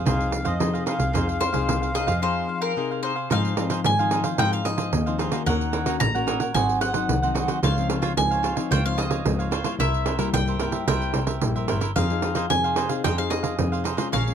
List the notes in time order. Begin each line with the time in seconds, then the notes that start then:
0.05 C2 F3 C4 D#4 G#4 C5 F5, pandeiro
0.20 pandeiro
0.32 muted cavaquinho stroke, pandeiro
0.45 F2 G#4 C5 D#5 F5, pandeiro
0.60 C3 F3 C4 D#4 G#4 C5 F5, pandeiro
0.74 G#4 C5 F5, pandeiro
0.86 D#4 G#4 C5 F5, pandeiro
0.99 C2 G#4 C5 F5, pandeiro
1.13 F2 F3 C4 D#4 G#4 C5 F5, pandeiro
1.28 G#4 C5 F5, pandeiro
1.40 C5, muted cavaquinho stroke, pandeiro
1.53 C2 C4 D#4 G#4 C5 F5, pandeiro
1.68 C2 C3, pandeiro
1.82 G#4 C5 F5, pandeiro
1.94 C4 D#4 G#4 C5 D#5 F5, pandeiro
2.07 F2 G#4 C5 F5, pandeiro
2.22 F3 C4 D#4 G#4 C5 F5
2.49 muted cavaquinho stroke
2.61 G#4 A#4 C5 F5
2.76 C3 C4 D#4 G#4 C5 F5
2.91 G#4 C5 F5
3.03 D#4 G#4 C5 F5
3.16 G#4 C5 F5
3.30 G#2 F3 C4 D#4 G#4 C5 F5, pandeiro
3.45 pandeiro
3.57 F3 C4 D#4 G#4 C5 F5, pandeiro
3.70 D#4 G#4 C5 F5, pandeiro
3.84 G#2 D#3 G#5, pandeiro
3.99 F3 C4 D#4 G#4 C5 F5, pandeiro
4.11 D#4 G#4 C5 F5, pandeiro
4.24 G#4 C5 F5, pandeiro
4.38 G#2 F3 C4 D#4 G#4 C5 F5 G5, pandeiro
4.53 F5, pandeiro
4.65 F3 C4 D#4 G#4 C5 D#5 F5, pandeiro
4.77 G#4 C5 F5, pandeiro
4.93 D#2 D#3, pandeiro
5.06 F3 C4 D#4 G#4 C5 F5, pandeiro
5.18 D#4 G#4 C5 F5, pandeiro
5.31 A#3 C#4 D#4 F#4 G#4 C5 F5, pandeiro
5.46 D#2 D#3 D#4 A#4 C#5 F#5, pandeiro
5.61 pandeiro
5.73 D#4 A#4 C#5 F#5, pandeiro
5.86 A#3 C#4 D#4 F#4 A#4 C#5 F#5, pandeiro
6.00 A1 A#2 A#5, pandeiro
6.15 A#3 C#4 F#4 A#4 C#5 F#5, pandeiro
6.27 D#4 A#4 C#5 F#5, pandeiro
6.40 A#4 C#5 F#5, pandeiro
6.54 G#1 G#2 F#3 C4 D#4 F#4 G#4 C5 F#5 G#5, pandeiro
6.69 pandeiro
6.81 F#4 G#4 C5 F#5, pandeiro
6.93 F#3 C4 D#4 G#4 C5 F#5, pandeiro
7.09 C2 D#3, pandeiro
7.22 F#3 C4 D#4 G#4 C5 F#5, pandeiro
7.35 F#4 G#4 C5 F#5, pandeiro
7.48 F#4 G#4 C5 F#5, pandeiro
7.63 C#2 C#3 F3 C4 D#4 F4 C5 C#5 F5, pandeiro
7.78 F3 C4 D#4, pandeiro
7.89 F4 C5 C#5 F5, pandeiro
8.02 F4 C5 C#5 F5, pandeiro
8.17 C#2 G#2 F3 C4 D#4 G#5, pandeiro
8.31 C5 C#5 F5, pandeiro
8.43 F4 C5 C#5 F5, pandeiro
8.56 F3 C4 D#4 C5 C#5 F5, pandeiro
8.71 C#2 C#3 F4 C5 C#5 F5 G5, pandeiro
8.86 F3 C4 D#4 F5, pandeiro
8.97 F4 C5 C#5 D#5 F5, pandeiro
9.10 C5 C#5 F5, pandeiro
9.25 C#2 G#2 F3 C4 D#4, pandeiro
9.39 C5 C#5 F5, pandeiro
9.51 F4 C5 C#5 F5, pandeiro
9.64 G3 A#3 E4 F4 C5 C#5 F5, pandeiro
9.79 C2 C3 E4 A#4 C5 E5, pandeiro
9.94 pandeiro
10.05 E4 A#4 C5 E5, pandeiro
10.19 G3 A#3 E4 A#4 C5 E5, pandeiro
10.33 C2 G2 G5, pandeiro
10.47 A#4 C5 E5, pandeiro
10.60 G3 A#3 E4 A#4 C5 E5, pandeiro
10.72 A#4 C5 E5, pandeiro
10.88 C2 C3 G3 A#3 E4 A#4 C5 E5 G5, pandeiro
11.02 pandeiro
11.14 C2 E4 A#4 C5 E5, pandeiro
11.27 A#4 C5 E5, pandeiro
11.41 A#1 G2 G3 A#3 E4, pandeiro
11.56 A#4 C5 E5, pandeiro
11.68 G1 E4 A#4 C5 E5, pandeiro
11.81 E4 A#4 C5 E5, pandeiro
11.96 F2 F3 C4 D#4 G#4 C5 F5, pandeiro
12.10 C4 D#4 G#4, pandeiro
12.22 D#4 G#4 C5 F5, pandeiro
12.35 D#4 G#4 C5 F5, pandeiro
12.50 F2 C3 C4 D#4 G#4 G#5, pandeiro
12.64 G#4 C5 F5, pandeiro
12.76 D#4 G#4 C5 F5, pandeiro
12.89 C4 D#4 G#4 C5 F5, pandeiro
13.04 F2 F3 D#4 G#4 C5 F5 G5, pandeiro
13.18 C4 D#4 G#4 F5, pandeiro
13.30 D#4 G#4 C5 D#5 F5, pandeiro
13.43 G#4 C5 F5, pandeiro
13.59 F2 C3 C4 D#4 G#4, pandeiro
13.72 G#4 C5 F5, pandeiro
13.84 D#4 G#4 C5 F5, pandeiro
13.97 G#3 C#4 D#4 F4 G#4 C5 F5, pandeiro
14.12 A#1 A#2 G#4 C#5 F5 A#5, pandeiro
14.27 G#3 C#4 F4, pandeiro